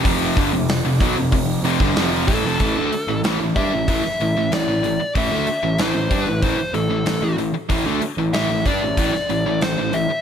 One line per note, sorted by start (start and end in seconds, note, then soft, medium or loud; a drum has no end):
0.05 0.35 F1 medium
0.05 0.36 F2 medium
0.05 0.36 C3 medium
0.05 0.36 F3 loud
0.05 kick loud
0.05 open hi-hat medium
0.37 0.52 G1 loud
0.37 0.52 G2 medium
0.37 0.52 D3 medium
0.37 kick loud
0.37 open hi-hat medium
0.53 0.83 F1 medium
0.53 0.78 F2 medium
0.53 0.79 C3 medium
0.69 snare loud
0.69 open hi-hat medium
0.85 1.00 F1 medium
0.85 1.01 F2 medium
0.85 1.01 C3 medium
1.00 1.16 B1 loud
1.00 1.16 B2 medium
1.00 1.16 F#3 loud
1.00 kick loud
1.00 open hi-hat medium
1.16 1.31 F1 medium
1.16 1.31 F2 medium
1.16 1.31 C3 medium
1.32 1.62 F1 medium
1.32 1.58 F2 medium
1.32 1.58 C3 medium
1.32 kick loud
1.32 open hi-hat medium
1.63 1.79 F1 medium
1.63 1.80 F2 medium
1.63 1.80 C3 loud
1.63 open hi-hat medium
1.80 1.94 G1 medium
1.80 1.96 G2 medium
1.80 1.96 D3 loud
1.80 kick loud
1.95 2.25 F1 medium
1.95 2.28 F2 loud
1.95 2.28 C3 loud
1.95 2.28 F3 medium
1.95 snare medium
1.95 open hi-hat medium
2.28 2.43 A1 loud
2.28 2.44 A2 loud
2.28 2.44 E3 loud
2.28 3.20 A4 loud
2.28 kick loud
2.28 open hi-hat medium
2.43 2.59 F1 loud
2.43 2.60 F2 medium
2.43 2.60 C3 loud
2.60 2.75 A1 medium
2.60 2.75 A2 medium
2.60 2.76 E3 medium
2.60 kick medium
2.60 open hi-hat medium
2.76 2.91 D2 medium
2.76 2.91 D3 medium
2.76 2.92 A3 loud
2.92 muted picked electric bass stroke soft
2.92 muted distorted electric guitar stroke medium
2.92 open hi-hat medium
3.07 3.22 A1 medium
3.07 3.23 A2 medium
3.07 3.24 E3 medium
3.23 3.38 A1 medium
3.23 3.39 A2 medium
3.23 3.39 E3 medium
3.23 snare loud
3.23 open hi-hat medium
3.40 3.55 A1 medium
3.40 3.56 A2 medium
3.40 3.56 E3 medium
3.56 3.71 G2 loud
3.56 3.71 G3 medium
3.56 3.72 D4 loud
3.56 3.86 E5 loud
3.56 kick loud
3.56 open hi-hat soft
3.72 3.87 A1 medium
3.72 3.88 A2 medium
3.72 3.88 E3 medium
3.88 4.03 A1 medium
3.88 4.03 A2 medium
3.88 4.04 E3 loud
3.88 4.53 E5 loud
3.88 kick loud
3.88 open hi-hat medium
4.04 muted picked electric bass stroke soft
4.04 muted distorted electric guitar stroke medium
4.04 snare soft
4.20 4.35 A1 medium
4.20 4.36 A2 medium
4.20 4.36 E3 medium
4.20 open hi-hat soft
4.35 4.50 A1 medium
4.35 4.51 A2 medium
4.35 4.51 E3 medium
4.51 4.66 A1 medium
4.51 4.67 A2 medium
4.51 4.67 E3 medium
4.51 5.12 D5 medium
4.51 snare medium
4.51 open hi-hat medium
4.68 4.82 A1 medium
4.68 4.82 A2 medium
4.68 4.82 E3 medium
4.83 4.99 A1 medium
4.83 4.99 A2 medium
4.83 5.00 E3 medium
4.83 open hi-hat medium
5.00 muted distorted electric guitar stroke medium
5.00 muted picked electric bass stroke soft
5.15 5.30 A1 medium
5.15 5.30 A2 medium
5.15 5.31 E3 medium
5.15 5.82 E5 loud
5.15 kick loud
5.15 open hi-hat medium
5.31 5.46 D2 medium
5.31 5.46 D3 medium
5.31 5.47 A3 medium
5.47 muted picked electric bass stroke soft
5.47 muted distorted electric guitar stroke medium
5.47 open hi-hat medium
5.63 5.78 A1 medium
5.63 5.77 A2 medium
5.63 5.78 E3 medium
5.78 5.94 A1 medium
5.78 5.93 A2 loud
5.78 5.94 E3 loud
5.78 6.23 C5 medium
5.78 snare loud
5.78 open hi-hat medium
5.95 6.10 A1 medium
5.95 6.11 A2 medium
5.95 6.11 E3 medium
6.11 6.25 G2 loud
6.11 6.26 G3 medium
6.11 6.26 D4 loud
6.11 kick loud
6.11 open hi-hat medium
6.23 6.41 A1 medium
6.23 6.40 B4 medium
6.28 6.42 A2 medium
6.28 6.43 E3 medium
6.42 6.57 A1 medium
6.42 6.57 A2 medium
6.42 6.59 E3 loud
6.42 6.75 C5 medium
6.42 kick loud
6.42 open hi-hat medium
6.57 muted picked electric bass stroke soft
6.57 muted distorted electric guitar stroke medium
6.73 6.89 A1 medium
6.73 6.89 A2 medium
6.73 6.90 E3 medium
6.73 7.35 A4 medium
6.73 open hi-hat soft
6.90 7.04 A1 medium
6.90 7.05 A2 medium
6.90 7.05 E3 medium
7.05 7.21 A1 medium
7.05 7.21 A2 medium
7.05 7.22 E3 medium
7.05 snare loud
7.05 open hi-hat medium
7.21 7.36 A1 medium
7.21 7.37 A2 medium
7.21 7.38 E3 medium
7.37 7.52 A1 medium
7.37 7.53 A2 medium
7.37 7.55 E3 medium
7.37 open hi-hat medium
7.54 muted picked electric bass stroke soft
7.54 muted distorted electric guitar stroke medium
7.69 7.85 A1 medium
7.69 7.85 A2 medium
7.69 7.85 E3 loud
7.69 kick loud
7.69 open hi-hat medium
7.85 8.01 D2 medium
7.85 8.01 D3 medium
7.85 8.01 A3 medium
8.01 muted picked electric bass stroke soft
8.01 muted distorted electric guitar stroke medium
8.01 open hi-hat medium
8.17 8.32 A1 medium
8.17 8.33 A2 medium
8.17 8.34 E3 medium
8.33 8.48 A1 medium
8.33 8.49 A2 medium
8.33 8.50 E3 medium
8.33 8.66 E5 loud
8.33 snare loud
8.33 open hi-hat medium
8.49 8.65 A1 medium
8.49 8.66 A2 medium
8.49 8.66 E3 medium
8.66 8.81 G2 loud
8.66 8.81 G3 medium
8.66 8.82 D4 loud
8.66 9.65 D5 medium
8.66 kick loud
8.66 open hi-hat medium
8.83 8.97 A1 medium
8.83 8.97 A2 medium
8.83 8.98 E3 medium
8.97 9.12 A1 medium
8.97 9.13 A2 medium
8.97 9.13 E3 medium
8.97 kick loud
8.97 open hi-hat medium
9.14 muted distorted electric guitar stroke medium
9.14 muted picked electric bass stroke soft
9.14 snare soft
9.29 9.45 A1 medium
9.29 9.45 A2 medium
9.29 9.46 E3 medium
9.29 open hi-hat soft
9.46 9.61 A1 medium
9.46 9.61 A2 medium
9.46 9.61 E3 medium
9.61 9.77 A1 medium
9.61 9.77 A2 medium
9.61 9.77 E3 medium
9.61 9.95 C5 medium
9.61 snare medium
9.61 open hi-hat medium
9.78 9.92 A1 medium
9.78 9.93 A2 medium
9.78 9.93 E3 medium
9.93 10.08 A1 medium
9.93 10.09 A2 medium
9.93 10.10 E3 medium
9.93 10.21 E5 loud
9.93 open hi-hat soft
10.09 muted picked electric bass stroke soft
10.09 muted distorted electric guitar stroke medium